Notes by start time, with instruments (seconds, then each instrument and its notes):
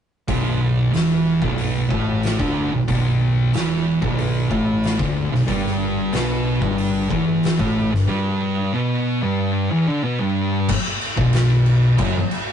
0.28 picked electric bass B0, distorted electric guitar B1 B2, kick, open hi-hat
0.93 picked electric bass E1, distorted electric guitar E2 E3, snare, open hi-hat
1.41 picked electric bass B0, distorted electric guitar B1 B2, kick
1.58 open hi-hat
1.90 picked electric bass A1, distorted electric guitar A2 A3, kick
2.23 snare, open hi-hat
2.39 picked electric bass D1, distorted electric guitar D2 D3, kick
2.72 picked electric bass B0, distorted electric guitar B1
2.88 picked electric bass B0, distorted electric guitar B1 B2, kick, open hi-hat
3.53 picked electric bass E1, distorted electric guitar E2 E3, snare, open hi-hat
4.01 picked electric bass B0, distorted electric guitar B1 B2, kick
4.18 open hi-hat
4.50 picked electric bass A1, distorted electric guitar A2 A3, kick
4.83 snare, open hi-hat
4.99 picked electric bass D1, distorted electric guitar D2 D3, kick
5.31 picked electric bass B0, distorted electric guitar B1, snare
5.47 picked electric bass G1, distorted electric guitar G2 G3, kick, open hi-hat
5.67 snare
6.13 picked electric bass B1, distorted electric guitar B2 B3, snare, open hi-hat
6.60 picked electric bass G1, distorted electric guitar G2 G3, kick
6.78 open hi-hat
7.09 picked electric bass E1, distorted electric guitar E2 E3, kick
7.43 snare, open hi-hat
7.58 picked electric bass A1, distorted electric guitar A2 A3, kick
7.91 picked electric bass G1, distorted electric guitar G2, snare
8.07 distorted electric guitar G2 G3
8.73 distorted electric guitar B2 B3
9.22 distorted electric guitar G2 G3
9.71 distorted electric guitar E2 E3
9.87 distorted electric guitar D3 D4
10.03 distorted electric guitar B2 B3
10.20 distorted electric guitar G2 G3
10.69 kick, crash
11.01 crash
11.17 picked electric bass B0, distorted electric guitar B1 B2, kick
11.33 snare, crash
11.66 crash
11.98 picked electric bass F#1, distorted electric guitar F#2 F#3, kick, crash
12.31 crash